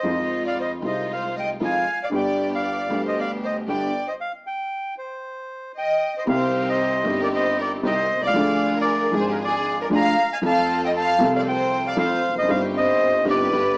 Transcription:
Already playing: C5 D#5
0.02 F2 D#3 F3 G#3 C4 D#4 F4
0.06 F4
0.46 D5 F5
0.59 C5 D#5
0.80 C2 C3 D#3 G#3 C4 D#4 F4
0.84 F4 C5 D#5
1.11 C5 F5
1.36 D#5 G5
1.60 F2 D#3 F3 G#3 C4 D#4 F4 F5
1.64 G#5
2.03 D5 F5
2.09 G1 G2 D3 G3 B3 D4 G4
2.14 G4 D5 G5
2.54 D5 F5
2.88 D2 D3 G3 B3 D4 G4
3.06 C5 D#5
3.19 D5 F5
3.44 C5 D#5
3.67 G1 G2 D3 G3 B3 D4 G4 D5 G5
4.08 C5 D#5
4.21 F5
4.47 G5
4.98 C5
5.77 D#5 G5
6.18 C5 D#5
6.25 C2 C3 D#3 G3 C4 D#4 G4 F5
6.30 C5
6.68 C5 D#5
7.03 G1 G2 D#3 G3 C4 D#4 G4
7.21 A#4 D5
7.33 C5 D#5
7.58 A#4 D5
7.83 C2 C3 D#3 G3 C4 D#4 G4 C5 D#5
8.16 B1
8.21 C2 D5
8.27 C#2 F5
8.34 D2 D3 F3 G#3 D4 F4 G#4
8.75 A#4
8.81 D5
9.11 G#1 G#2 F3 G#3 D4 F4 G#4
9.15 G#4
9.20 C5
9.28 G4 A#4
9.40 G#4
9.44 D5
9.82 A#4 D5
9.90 D2 D3 F3 G#3 D4 F4 G#4
9.95 F5 A#5
10.33 F5 G#5
10.42 F2 F3 A3 C4 F4 A4 F5
10.46 A5
10.85 D#5 G5
10.97 F5 A5
11.18 C2 C3 F3 A3 C4 F4 A4
11.36 D5 F5
11.48 C5 G5
11.87 D5 F5
11.96 F2 F3 A3 C4 F4 A4 C5 F5
12.28 E1 E2
12.35 F1 F2 C5 D#5
12.42 F#1 F#2
12.46 G1 G2 D#3 G3 C4 D#4 G4 F5
12.52 C5
12.77 C5 D#5
13.25 G1 G2 D#3 G3 C4 D#4 G4 B4
13.30 D5
13.51 G1 G2 D3 G3 B3 D4 G4

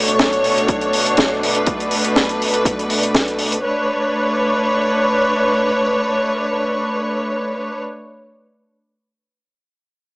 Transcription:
Already playing: B2 A3 D4 C#5
0.08 closed hi-hat
0.19 kick, snare, closed hi-hat
0.33 closed hi-hat
0.44 open hi-hat
0.58 closed hi-hat
0.68 kick, closed hi-hat
0.81 closed hi-hat
0.93 open hi-hat
1.06 closed hi-hat
1.17 kick, snare, closed hi-hat
1.43 B4, open hi-hat
1.55 closed hi-hat
1.66 kick, closed hi-hat
1.80 closed hi-hat
1.91 open hi-hat
2.05 closed hi-hat
2.16 kick, snare, closed hi-hat
2.29 closed hi-hat
2.42 open hi-hat
2.54 closed hi-hat
2.65 kick, closed hi-hat
2.79 closed hi-hat
2.90 open hi-hat
3.03 closed hi-hat
3.15 kick, snare, closed hi-hat
3.28 closed hi-hat
3.39 open hi-hat
3.52 closed hi-hat
3.64 A3 D4 B4 C#5

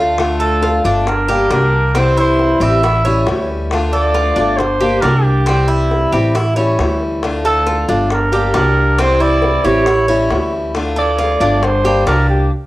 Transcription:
Already playing: D2 D4 F4
0.00 A3
0.18 D3 A3 D4 F4, high bongo
0.40 A4, high bongo
0.62 F4, high bongo
0.84 G1 A3 D4 F4
1.07 A#4, muted steel-string acoustic guitar stroke, high bongo
1.28 G3 A#3 D4 G4, high bongo
1.50 C2 G3 A#3 D4 G4 A#4, high bongo, low bongo
1.73 high bongo
1.95 C3 E3 G3 C4 E4 C5, high bongo
2.17 E4 C5
2.39 high bongo
2.60 A1 E3 G3 C4 E4 G4 E5, high bongo
2.83 E4, muted steel-string acoustic guitar stroke, high bongo
3.05 G3 C#4 E4 C#5, high bongo
3.26 D2 E3 G3 C#4 E4, high bongo, low bongo
3.50 high bongo
3.71 D3 A3 D4 F4, high bongo
3.93 A4 D5, high bongo
4.14 F4, high bongo
4.36 G1 A3 D4 F4
4.57 C5, muted steel-string acoustic guitar stroke, high bongo
4.80 G3 A#3 D4 G4, high bongo
5.01 C2 G3 A#3 D4 G4 A#4, high bongo, low bongo
5.23 G4, high bongo
5.46 C3 E3 G3 C4 E4, high bongo
5.68 E4
5.91 high bongo
6.12 A1 E3 G3 C4 E4 G4, high bongo
6.35 E4, muted steel-string acoustic guitar stroke, high bongo
6.56 G3 C#4 E4 C#5, high bongo
6.79 D2 E3 G3 C#4 E4, high bongo, low bongo
7.01 high bongo
7.23 D3 A3 D4 F4, high bongo
7.44 A4, high bongo
7.66 F4, high bongo
7.88 G1 A3 D4 F4
8.10 A#4, muted steel-string acoustic guitar stroke, high bongo
8.32 G3 A#3 D4 G4, high bongo
8.54 C2 G3 A#3 D4 G4 A#4, high bongo, low bongo
8.77 high bongo
8.99 C3 E3 G3 C4 E4 C5, high bongo
9.20 E4 D5
9.42 high bongo
9.64 A1 E3 G3 C4 E4 G4 C#5, high bongo
9.86 E4, muted steel-string acoustic guitar stroke, high bongo
10.08 G3 C#4 E4 C#5, high bongo
10.30 D2 E3 G3 C#4 E4, high bongo, low bongo
10.53 high bongo
10.74 D3 A3 D4 F4, high bongo
10.96 A4 D5, high bongo
11.18 F4, high bongo
11.40 G1 A3 D4 F4
11.63 C5, muted steel-string acoustic guitar stroke, high bongo
11.84 G3 A#3 D4 G4, high bongo
12.07 C2 G3 A#3 D4 G4 A#4, high bongo, low bongo
12.29 G4, high bongo

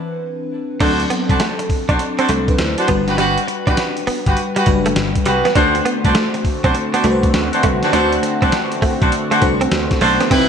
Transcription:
Already playing: E3 C4 D4 B4
0.80 D2 F#3 C4 D4 F#4 A4 C5, kick, closed hi-hat, crash
1.00 muted clean electric guitar stroke, closed hi-hat
1.10 B3, closed hi-hat
1.29 C2 D4 F#4 C5, kick, closed hi-hat
1.40 A3, snare, closed hi-hat
1.59 muted clean electric guitar stroke, closed hi-hat
1.70 muted slap bass stroke, kick, open hi-hat
1.89 B1 D4 F#4 C5, kick, closed hi-hat
1.99 muted clean electric guitar stroke, closed hi-hat
2.18 C4 D4 F#4 C5, closed hi-hat
2.29 C2 A3 C4 A4, closed hi-hat
2.48 D4 B4, kick, closed hi-hat
2.58 D2 E4 C5, snare, closed hi-hat
2.78 D4 F#4 C5 D5, closed hi-hat
2.88 G1 G3 B3 D4 F#4 B4, kick, closed hi-hat
3.07 F#4 G4 B4, snare, closed hi-hat
3.18 G3 F#4 G4 B4, closed hi-hat
3.38 closed hi-hat
3.48 muted clean electric guitar stroke, closed hi-hat
3.67 A1 D4 F#4 G4 B4, kick, closed hi-hat
3.77 snare, closed hi-hat
3.97 closed hi-hat
4.07 B3, muted slap bass stroke, open hi-hat
4.26 G1 F#4 G4 B4, kick, closed hi-hat
4.37 closed hi-hat
4.56 G3 F#4 G4 B4, closed hi-hat
4.66 F#1 G3 D4 F#4 B4, muted clean electric guitar stroke, kick, closed hi-hat
4.86 A3, closed hi-hat
4.96 G1, muted clean electric guitar stroke, snare, closed hi-hat
5.15 kick, closed hi-hat
5.25 C2 G3 F#4 G4 B4, closed hi-hat
5.45 B3, snare, closed hi-hat
5.55 D2 D3 A3 C4 D4 F#4 C5, kick, closed hi-hat
5.75 muted clean electric guitar stroke, closed hi-hat
5.85 B3, closed hi-hat
6.04 C2 D4 F#4 C5, kick, closed hi-hat
6.15 A3, snare, closed hi-hat
6.34 muted clean electric guitar stroke, closed hi-hat
6.45 muted slap bass stroke, kick, open hi-hat
6.64 B1 C4 D4 F#4 C5, kick, closed hi-hat
6.74 muted clean electric guitar stroke, closed hi-hat
6.93 B3 D4 F#4 C5, closed hi-hat
7.04 C2 A3 D4 F#4 B4, closed hi-hat
7.11 C5
7.23 kick, closed hi-hat
7.34 D2, snare, closed hi-hat
7.53 D4 F#4 C5, closed hi-hat
7.63 C2 A3, kick, closed hi-hat
7.82 D4 F#4 C5, snare, closed hi-hat
7.93 D2 A3 D4 F#4 C5, closed hi-hat
8.12 closed hi-hat
8.23 muted clean electric guitar stroke, closed hi-hat
8.42 C2 C4 D4 F#4 C5, kick, closed hi-hat
8.52 snare, closed hi-hat
8.72 closed hi-hat
8.82 A3, muted slap bass stroke, kick, open hi-hat
9.01 B1 D4 F#4 C5, kick, closed hi-hat
9.12 closed hi-hat
9.31 A3 D4 F#4 C5, closed hi-hat
9.41 C2 A3 D4 F#4 C5, muted clean electric guitar stroke, kick, closed hi-hat
9.61 C4, closed hi-hat
9.71 D2, muted clean electric guitar stroke, snare, closed hi-hat
9.91 kick, snare, closed hi-hat
10.01 B1 A3 D4 F#4 C5, open hi-hat
10.20 B3, snare, closed hi-hat
10.30 C2 C3 G3 C4 D#4 E4 B4, kick, closed hi-hat, crash, tambourine
10.38 E4

